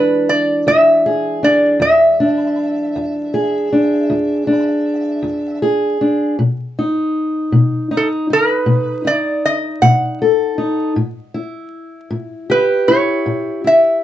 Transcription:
0.00 0.21 E2 medium
0.00 6.38 E3 medium
0.00 6.38 G#3 medium
0.00 1.42 D4 soft
0.00 0.31 B4 medium
0.29 0.65 D5 medium
0.67 1.36 E2 medium
0.67 1.46 E5 loud
1.06 1.77 G#4 medium
1.43 1.77 D4 medium
1.43 1.83 D5 medium
1.80 2.49 E2 medium
1.80 5.59 E5 medium
2.20 3.71 D4 soft
2.96 3.65 E2 medium
3.34 5.61 G#4 medium
3.72 4.46 D4 soft
4.10 4.79 E2 medium
4.47 6.00 D4 soft
5.22 5.92 E2 medium
5.62 6.34 G#4 medium
6.01 6.35 D4 soft
6.39 7.08 B2 medium
6.79 7.90 D#4 medium
7.52 8.22 B2 medium
7.91 8.29 D#4 medium
7.97 8.07 A4 medium
8.30 9.04 D#4 medium
8.30 9.10 B4 medium
8.66 9.36 B2 medium
9.05 10.57 D#4 soft
9.05 9.45 D5 medium
9.46 9.85 D#5 medium
9.82 10.51 B2 medium
9.82 10.18 F#5 medium
10.22 10.93 A4 medium
10.58 10.92 D#4 soft
10.96 11.66 A2 medium
11.34 12.88 E4 medium
12.10 12.80 A2 medium
12.50 14.04 G4 medium
12.50 12.90 B4 medium
12.88 13.63 E4 medium
12.88 13.61 C#5 medium
13.26 13.95 A2 medium
13.64 14.04 E4 soft
13.64 14.02 E5 medium

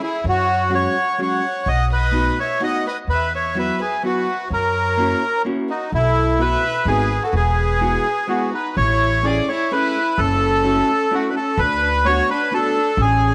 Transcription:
0.03 0.25 E4 medium
0.03 0.24 G#4 medium
0.24 0.85 F#2 medium
0.24 0.70 C#5 medium
0.29 0.74 F#4 loud
0.70 0.94 F#3 medium
0.70 0.94 G#3 medium
0.70 0.94 C#4 medium
0.70 0.94 F#4 medium
0.70 1.16 F#5 medium
0.75 1.21 C#5 loud
1.18 1.42 F#3 medium
1.18 1.42 G#3 medium
1.18 1.42 C#4 medium
1.18 1.42 F#4 medium
1.18 1.69 C#5 medium
1.23 1.65 F#5 medium
1.66 2.27 B1 medium
1.66 1.89 D#5 loud
1.66 1.90 F#5 medium
1.93 2.40 B4 loud
1.93 2.36 D#5 medium
2.11 2.36 A3 medium
2.11 2.36 B3 medium
2.11 2.37 D#4 medium
2.11 2.37 F#4 medium
2.40 2.62 C#5 medium
2.40 2.61 E5 medium
2.60 2.84 A3 medium
2.60 2.84 B3 soft
2.60 2.84 D#4 medium
2.60 2.85 F#4 medium
2.60 2.86 D#5 medium
2.60 2.84 F#5 medium
2.87 2.97 B4 medium
2.87 2.98 D#5 medium
3.07 3.69 E2 medium
3.07 3.33 B4 loud
3.12 3.32 E5 medium
3.34 3.58 C#5 medium
3.34 3.55 E5 medium
3.55 3.79 F#3 medium
3.55 3.79 B3 medium
3.55 3.79 E4 soft
3.55 3.80 F#4 medium
3.55 3.79 E5 medium
3.59 3.82 B4 medium
3.81 4.02 G#4 medium
3.81 4.03 B4 medium
4.03 4.27 F#3 medium
4.03 4.27 B3 medium
4.03 4.27 E4 soft
4.03 4.28 F#4 medium
4.03 4.48 F#4 medium
4.03 4.48 B4 medium
4.50 5.12 F#2 medium
4.50 5.42 A#4 loud
4.50 5.42 C#5 medium
4.97 5.21 A#3 medium
4.97 5.21 C#4 medium
4.97 5.21 E4 medium
4.97 5.22 F#4 medium
5.45 5.69 A#3 medium
5.45 5.69 C#4 medium
5.45 5.69 E4 medium
5.45 5.69 F#4 medium
5.70 5.91 D#4 medium
5.70 5.91 F#4 medium
5.92 6.53 B1 medium
5.92 6.42 E4 loud
5.92 6.36 A4 medium
6.39 6.62 A3 medium
6.39 6.63 B3 medium
6.39 6.63 E4 medium
6.39 6.63 F#4 medium
6.39 6.89 B4 loud
6.39 6.85 E5 medium
6.85 7.16 G#1 medium
6.85 7.10 G#3 medium
6.85 7.10 B3 medium
6.85 7.10 D#4 medium
6.85 7.11 F#4 medium
6.85 7.23 G#4 loud
6.90 7.21 B4 medium
7.23 7.35 F#4 medium
7.23 7.34 A4 medium
7.33 7.95 E1 medium
7.33 8.50 G#4 medium
7.38 8.27 B4 medium
7.81 8.04 G#3 medium
7.81 8.05 B3 medium
7.81 8.05 E4 medium
7.81 8.05 F#4 medium
8.27 8.52 G#3 medium
8.27 8.52 B3 medium
8.27 8.52 E4 medium
8.27 8.53 F#4 medium
8.27 8.54 F#4 medium
8.54 8.75 D#4 medium
8.54 8.76 B4 medium
8.77 9.38 A1 loud
8.77 9.22 E4 medium
8.77 9.25 C#5 loud
9.23 9.47 A3 medium
9.23 9.47 C#4 medium
9.23 9.48 E4 medium
9.23 9.48 G#4 medium
9.23 9.47 G#4 medium
9.23 9.49 D5 loud
9.48 9.72 E4 medium
9.48 9.72 C#5 medium
9.71 9.95 A3 medium
9.71 9.95 C#4 medium
9.71 9.95 E4 medium
9.71 10.17 E4 medium
9.71 9.95 G#4 medium
9.71 10.20 B4 loud
10.18 10.79 F#1 medium
10.18 11.09 C#4 medium
10.18 11.15 A4 loud
10.64 10.88 A3 medium
10.64 10.88 C#4 medium
10.64 10.89 E4 medium
10.64 10.89 F#4 medium
11.11 11.35 A3 medium
11.11 11.29 A3 medium
11.11 11.35 C#4 medium
11.11 11.36 E4 medium
11.11 11.36 F#4 medium
11.11 11.30 F#4 medium
11.29 11.36 D4 medium
11.29 11.35 B4 medium
11.36 11.59 C#4 medium
11.36 11.60 A4 medium
11.57 12.19 D2 loud
11.57 12.07 B4 loud
11.62 12.04 D4 medium
12.05 12.29 A3 medium
12.05 12.29 B3 medium
12.05 12.29 D4 medium
12.05 12.29 F#4 medium
12.05 12.28 F#4 medium
12.05 12.30 C#5 loud
12.30 12.52 D4 medium
12.30 12.54 B4 medium
12.52 12.75 A3 medium
12.52 12.75 B3 medium
12.52 12.76 D4 medium
12.52 12.97 D4 medium
12.52 12.76 F#4 medium
12.52 13.01 A4 loud
12.97 13.35 A1 loud
12.97 13.35 C#4 medium
12.97 13.35 G#4 loud

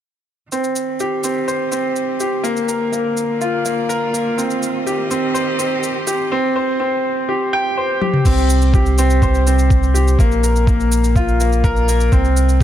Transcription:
0.51 2.45 D#3 medium
0.51 0.75 C4 medium
0.51 shaker soft
0.64 shaker soft
0.76 shaker soft
0.90 3.22 C4 medium
1.00 1.23 G4 medium
1.00 shaker soft
1.24 1.38 C4 medium
1.24 shaker medium
1.37 3.05 G4 medium
1.37 2.44 D#5 medium
1.48 1.62 C5 medium
1.48 shaker soft
1.72 1.95 C4 medium
1.72 shaker medium
1.96 shaker soft
2.20 2.44 G4 medium
2.20 shaker medium
2.44 4.38 D3 medium
2.44 2.67 A#3 medium
2.44 shaker soft
2.57 shaker soft
2.68 2.92 A#4 medium
2.68 shaker medium
2.92 3.16 A#3 medium
2.92 shaker soft
3.08 5.16 A#3 medium
3.17 shaker medium
3.31 5.15 F4 medium
3.31 4.38 D5 medium
3.41 3.64 F4 medium
3.41 shaker soft
3.65 3.89 A#3 medium
3.65 shaker medium
3.89 4.13 A#4 medium
3.89 shaker soft
4.13 4.37 A#3 medium
4.13 shaker medium
4.38 6.32 D#3 medium
4.38 4.61 C4 medium
4.38 shaker soft
4.50 shaker soft
4.63 shaker medium
4.78 6.33 D#5 medium
4.84 6.32 C4 medium
4.84 5.10 G4 medium
4.84 shaker soft
5.11 5.25 C4 medium
5.11 shaker medium
5.25 6.32 G4 medium
5.34 5.49 C5 medium
5.34 shaker soft
5.59 5.82 C4 medium
5.59 shaker medium
5.83 shaker soft
6.07 6.31 G4 medium
6.07 shaker medium
6.32 6.55 C4 medium
6.56 6.79 C5 medium
6.80 7.03 C4 medium
7.29 7.52 G4 medium
7.53 7.76 G5 medium
7.77 8.00 C5 medium
8.01 8.15 G4 medium
8.01 high tom medium
8.14 mid tom medium
8.25 10.17 C2 medium
8.25 8.49 C4 medium
8.25 kick medium
8.25 crash medium
8.25 shaker soft
8.38 shaker soft
8.50 shaker medium
8.62 shaker soft
8.74 8.97 G4 medium
8.74 kick loud
8.74 shaker soft
8.86 shaker soft
8.98 9.12 C4 medium
8.98 shaker medium
9.10 shaker soft
9.22 9.36 C5 medium
9.22 kick medium
9.22 shaker soft
9.35 shaker soft
9.47 9.70 C4 medium
9.47 shaker medium
9.59 shaker soft
9.70 kick medium
9.70 shaker soft
9.83 shaker soft
9.94 10.18 G4 medium
9.94 shaker medium
10.08 shaker soft
10.19 12.10 A#1 medium
10.19 10.42 A#3 medium
10.19 kick loud
10.19 shaker soft
10.32 shaker soft
10.44 10.66 A#4 medium
10.44 shaker medium
10.56 shaker soft
10.67 10.91 A#3 medium
10.67 kick loud
10.67 shaker soft
10.80 shaker soft
10.92 shaker medium
11.04 shaker soft
11.16 11.39 F4 medium
11.16 kick loud
11.16 shaker soft
11.28 shaker soft
11.40 11.63 A#3 medium
11.40 shaker medium
11.53 shaker soft
11.64 11.87 A#4 medium
11.64 kick loud
11.64 shaker soft
11.76 shaker soft
11.89 12.12 A#3 medium
11.89 shaker medium
12.00 shaker soft
12.12 12.63 C2 medium
12.12 12.36 C4 medium
12.12 kick loud
12.12 shaker soft
12.25 shaker soft
12.37 shaker medium
12.49 shaker soft

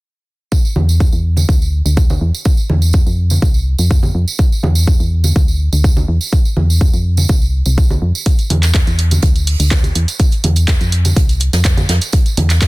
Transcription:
0.52 kick loud
0.52 tambourine medium
0.65 tambourine soft
0.76 1.09 E2 medium
0.76 high conga medium
0.89 tambourine medium
1.00 kick loud
1.00 tambourine medium
1.12 1.45 E2 medium
1.12 tambourine soft
1.37 tambourine medium
1.37 high conga medium
1.49 1.82 D2 medium
1.49 kick loud
1.49 tambourine medium
1.62 tambourine soft
1.86 2.18 D2 medium
1.86 tambourine medium
1.97 kick loud
1.97 tambourine medium
2.10 tambourine soft
2.10 high conga medium
2.21 2.32 E2 medium
2.34 tambourine medium
2.45 kick loud
2.45 tambourine medium
2.57 tambourine soft
2.70 3.03 E2 medium
2.70 high conga medium
2.82 tambourine medium
2.93 kick loud
2.93 tambourine medium
3.06 3.39 F2 medium
3.06 tambourine soft
3.30 tambourine medium
3.30 high conga medium
3.42 3.75 C2 loud
3.42 kick loud
3.42 tambourine medium
3.54 tambourine soft
3.79 4.11 F2 medium
3.79 tambourine medium
3.91 kick loud
3.91 tambourine medium
4.03 tambourine soft
4.03 high conga medium
4.15 4.25 F2 medium
4.28 tambourine medium
4.39 kick loud
4.39 tambourine medium
4.52 tambourine soft
4.63 4.96 E2 medium
4.63 high conga medium
4.75 tambourine medium
4.87 kick loud
5.00 5.32 E2 medium
5.00 tambourine soft
5.24 tambourine medium
5.24 high conga medium
5.36 5.69 D2 medium
5.36 kick loud
5.48 tambourine soft
5.73 6.05 D2 medium
5.73 tambourine medium
5.84 kick loud
5.84 tambourine medium
5.97 tambourine soft
5.97 high conga medium
6.08 6.19 E2 medium
6.21 tambourine medium
6.33 kick loud
6.33 tambourine medium
6.45 tambourine soft
6.57 6.90 E2 medium
6.57 high conga medium
6.70 tambourine medium
6.81 kick loud
6.93 7.26 F2 medium
6.93 tambourine soft
7.17 tambourine medium
7.17 high conga medium
7.29 7.62 C2 medium
7.29 kick loud
7.29 tambourine medium
7.42 tambourine soft
7.66 7.98 C2 medium
7.66 tambourine medium
7.78 kick loud
7.78 tambourine medium
7.90 tambourine soft
7.90 high conga medium
8.02 8.12 F2 medium
8.15 tambourine medium
8.26 kick loud
8.26 closed hi-hat medium
8.38 closed hi-hat soft
8.38 tambourine soft
8.50 8.83 E2 medium
8.50 closed hi-hat medium
8.50 high conga medium
8.63 snare soft
8.63 clap soft
8.63 closed hi-hat soft
8.63 tambourine medium
8.74 kick medium
8.74 snare loud
8.74 clap loud
8.74 closed hi-hat medium
8.74 tambourine medium
8.87 9.19 E2 medium
8.87 closed hi-hat soft
8.87 tambourine soft
8.99 closed hi-hat medium
9.11 closed hi-hat soft
9.11 tambourine medium
9.11 high conga medium
9.22 9.56 D2 loud
9.22 kick loud
9.22 closed hi-hat medium
9.22 tambourine medium
9.36 closed hi-hat soft
9.36 tambourine soft
9.47 closed hi-hat medium
9.47 open hi-hat medium
9.60 9.92 D2 medium
9.60 closed hi-hat soft
9.60 tambourine medium
9.71 kick loud
9.71 snare loud
9.71 clap loud
9.71 closed hi-hat medium
9.83 closed hi-hat soft
9.83 tambourine soft
9.83 high conga medium
9.95 10.06 E2 medium
9.95 closed hi-hat medium
10.08 closed hi-hat soft
10.08 tambourine medium
10.19 kick loud
10.19 closed hi-hat medium
10.19 tambourine medium
10.32 closed hi-hat soft
10.32 tambourine soft
10.44 10.77 E2 loud
10.44 closed hi-hat medium
10.44 high conga medium
10.56 closed hi-hat soft
10.56 tambourine medium
10.68 kick medium
10.68 snare loud
10.68 clap loud
10.68 closed hi-hat medium
10.68 tambourine medium
10.81 11.13 F2 medium
10.81 closed hi-hat soft
10.81 tambourine soft
10.92 closed hi-hat medium
11.05 closed hi-hat soft
11.05 tambourine medium
11.05 high conga medium
11.16 11.49 C2 medium
11.16 kick loud
11.16 closed hi-hat medium
11.29 closed hi-hat soft
11.29 tambourine soft
11.40 closed hi-hat medium
11.53 11.86 F2 medium
11.53 snare soft
11.53 closed hi-hat soft
11.53 tambourine medium
11.64 kick medium
11.64 snare loud
11.64 clap loud
11.64 closed hi-hat medium
11.64 tambourine medium
11.77 closed hi-hat soft
11.77 tambourine soft
11.77 high conga medium
11.89 11.99 F2 medium
11.89 snare soft
11.89 closed hi-hat medium
12.01 closed hi-hat soft
12.01 tambourine medium
12.12 kick loud
12.12 closed hi-hat medium
12.12 tambourine medium
12.26 closed hi-hat soft
12.26 tambourine soft
12.37 12.67 E2 loud
12.37 closed hi-hat medium
12.37 high conga medium
12.50 snare soft
12.50 clap soft
12.50 closed hi-hat soft
12.50 tambourine medium
12.61 kick medium
12.61 snare loud
12.61 clap loud
12.61 closed hi-hat medium
12.61 tambourine medium

